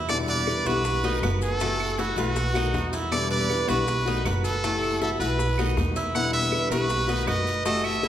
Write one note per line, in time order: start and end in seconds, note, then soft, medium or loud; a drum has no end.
0.00 0.60 E2 medium
0.08 0.46 B2 medium
0.08 0.45 D3 medium
0.08 0.46 G3 medium
0.08 0.46 B3 medium
0.08 0.47 E4 medium
0.08 0.18 D5 loud
0.08 high bongo medium
0.08 long guiro medium
0.08 claves medium
0.08 maracas medium
0.28 0.65 B4 medium
0.28 0.69 D5 loud
0.28 maracas soft
0.46 0.65 D3 soft
0.46 0.65 G3 medium
0.46 0.65 B3 medium
0.46 0.65 E4 medium
0.46 high bongo medium
0.46 short guiro medium
0.46 claves medium
0.46 maracas soft
0.66 1.19 B1 medium
0.66 0.85 D3 medium
0.66 0.85 G3 medium
0.66 0.84 B3 medium
0.66 0.84 E4 medium
0.66 1.03 F#4 medium
0.66 1.23 B4 loud
0.66 short guiro medium
0.66 maracas medium
0.84 muted nylon-string guitar stroke medium
0.84 high bongo medium
0.84 long guiro medium
0.84 maracas medium
1.03 1.21 D#3 medium
1.03 1.22 A3 medium
1.03 1.22 B3 medium
1.03 1.22 D#4 medium
1.03 1.22 F#4 medium
1.03 maracas soft
1.22 2.11 F#1 medium
1.22 1.59 D#3 soft
1.22 1.60 A3 medium
1.22 1.60 B3 medium
1.22 1.60 F#4 medium
1.22 1.60 B4 medium
1.22 high bongo medium
1.22 low bongo medium
1.22 short guiro medium
1.22 claves medium
1.22 maracas soft
1.41 2.01 A4 loud
1.41 short guiro medium
1.41 maracas medium
1.60 1.98 C3 medium
1.60 1.97 E3 medium
1.60 1.98 A3 medium
1.60 1.97 A3 medium
1.60 1.98 E4 medium
1.60 1.98 F#4 medium
1.60 high bongo medium
1.60 long guiro medium
1.60 maracas medium
1.80 claves medium
1.80 maracas soft
1.98 2.17 E3 soft
1.98 2.17 A3 medium
1.98 2.16 E4 medium
1.98 2.17 E4 medium
1.98 2.18 F#4 medium
1.98 2.15 F#4 medium
1.98 high bongo medium
1.98 short guiro medium
1.98 maracas soft
2.16 2.70 B1 medium
2.16 2.35 E3 medium
2.16 2.35 A3 medium
2.16 2.35 E4 medium
2.16 2.35 F#4 medium
2.16 2.90 F#4 medium
2.16 2.54 B4 medium
2.16 high bongo soft
2.16 short guiro medium
2.16 maracas medium
2.36 muted nylon-string guitar stroke medium
2.36 high bongo medium
2.36 long guiro medium
2.36 maracas medium
2.54 2.72 D#3 medium
2.54 2.72 A3 medium
2.54 2.73 B3 medium
2.54 2.92 D#4 medium
2.54 2.73 F#4 medium
2.54 high bongo soft
2.54 claves medium
2.54 maracas soft
2.73 3.63 E2 medium
2.73 3.11 D#3 medium
2.73 3.11 A3 soft
2.73 3.11 B3 medium
2.73 3.11 F#4 medium
2.73 high bongo medium
2.73 low bongo medium
2.73 short guiro medium
2.73 maracas soft
2.93 3.30 E4 medium
2.93 high bongo soft
2.93 short guiro medium
2.93 maracas medium
3.11 3.49 B2 medium
3.11 3.48 D3 medium
3.11 3.49 G3 medium
3.11 3.49 B3 medium
3.11 3.49 E4 medium
3.11 3.30 D5 loud
3.11 high bongo medium
3.11 claves medium
3.11 maracas medium
3.31 3.68 B4 medium
3.31 3.70 D5 loud
3.31 maracas soft
3.49 3.67 D3 medium
3.49 3.67 G3 medium
3.49 3.66 B3 medium
3.49 3.66 E4 medium
3.49 high bongo medium
3.49 short guiro medium
3.49 claves medium
3.49 maracas soft
3.67 4.21 B1 medium
3.67 3.87 D3 medium
3.67 3.87 G3 medium
3.67 3.86 B3 medium
3.67 3.86 E4 medium
3.67 4.05 F#4 medium
3.67 4.26 B4 loud
3.67 short guiro medium
3.67 maracas medium
3.87 muted nylon-string guitar stroke medium
3.87 high bongo medium
3.87 long guiro medium
3.87 maracas medium
4.05 4.24 D#3 medium
4.05 4.24 A3 medium
4.05 4.25 B3 medium
4.05 4.25 D#4 medium
4.05 4.24 F#4 medium
4.05 maracas soft
4.25 5.14 F#1 medium
4.25 4.62 D#3 medium
4.25 4.63 A3 medium
4.25 4.63 B3 medium
4.25 4.63 F#4 medium
4.25 4.62 B4 medium
4.25 high bongo medium
4.25 low bongo medium
4.25 short guiro medium
4.25 claves medium
4.25 maracas soft
4.44 4.97 A4 loud
4.44 short guiro medium
4.44 maracas medium
4.63 5.00 C3 medium
4.63 5.00 E3 medium
4.63 5.00 A3 medium
4.63 5.01 A3 medium
4.63 5.01 E4 medium
4.63 5.01 F#4 medium
4.63 high bongo medium
4.63 long guiro medium
4.63 maracas medium
4.83 claves medium
4.83 maracas soft
5.01 5.20 E3 medium
5.01 5.20 A3 medium
5.01 5.20 E4 medium
5.01 5.19 F#4 medium
5.01 5.11 A4 medium
5.01 high bongo medium
5.01 short guiro medium
5.01 maracas soft
5.20 5.73 B1 medium
5.20 5.39 E3 medium
5.20 5.39 A3 medium
5.20 5.39 E4 medium
5.20 5.38 F#4 medium
5.20 5.65 B4 medium
5.20 5.57 B4 medium
5.20 high bongo soft
5.20 short guiro medium
5.20 maracas medium
5.39 muted nylon-string guitar stroke medium
5.39 high bongo medium
5.39 long guiro medium
5.39 maracas medium
5.58 5.76 D#3 medium
5.58 5.76 A3 medium
5.58 5.77 B3 medium
5.58 5.95 D#4 medium
5.58 5.76 F#4 medium
5.58 high bongo soft
5.58 claves medium
5.58 maracas soft
5.77 6.65 E2 medium
5.77 6.14 D#3 medium
5.77 6.14 A3 soft
5.77 6.14 B3 medium
5.77 6.15 F#4 medium
5.77 high bongo medium
5.77 low bongo medium
5.77 short guiro medium
5.77 maracas soft
5.96 6.33 E4 medium
5.96 high bongo soft
5.96 short guiro medium
5.96 maracas medium
6.14 6.52 B2 medium
6.14 6.51 D3 medium
6.14 6.52 G3 medium
6.14 6.52 B3 medium
6.14 6.53 E4 medium
6.14 6.33 F#5 loud
6.14 high bongo medium
6.14 long guiro medium
6.14 claves medium
6.14 maracas medium
6.33 6.70 B4 medium
6.33 6.69 E5 loud
6.33 maracas soft
6.52 6.71 D3 medium
6.52 6.71 G3 medium
6.52 6.70 B3 medium
6.52 6.70 E4 medium
6.52 high bongo medium
6.52 short guiro medium
6.52 claves medium
6.52 maracas soft
6.70 7.24 B1 medium
6.70 6.90 D3 medium
6.70 6.90 G3 medium
6.70 6.89 B3 medium
6.70 6.89 E4 medium
6.70 7.08 F#4 medium
6.70 7.29 B4 medium
6.70 short guiro medium
6.70 maracas medium
6.90 muted nylon-string guitar stroke medium
6.90 high bongo medium
6.90 long guiro medium
6.90 maracas medium
7.08 7.26 D#3 medium
7.08 7.26 A3 medium
7.08 7.27 B3 medium
7.08 7.27 D#4 medium
7.08 7.27 F#4 medium
7.08 maracas soft
7.26 8.08 F#1 medium
7.26 7.64 D#3 medium
7.26 7.64 A3 soft
7.26 7.65 B3 medium
7.26 7.65 F#4 medium
7.26 7.65 B4 medium
7.26 7.65 D#5 medium
7.26 high bongo medium
7.26 low bongo medium
7.26 short guiro medium
7.26 claves medium
7.26 maracas soft
7.47 short guiro medium
7.47 maracas medium
7.64 8.02 C3 medium
7.64 8.01 E3 medium
7.64 8.02 A3 medium
7.64 8.03 A3 medium
7.64 8.02 E4 medium
7.64 8.02 F#4 medium
7.64 7.86 D#5 loud
7.64 high bongo medium
7.64 long guiro medium
7.64 maracas medium
7.84 8.08 E5 medium
7.84 claves medium
7.84 maracas soft
8.02 8.08 E3 medium
8.02 8.08 A3 medium
8.02 8.08 E4 medium
8.02 8.08 F#4 medium
8.02 high bongo medium
8.02 short guiro medium
8.02 maracas soft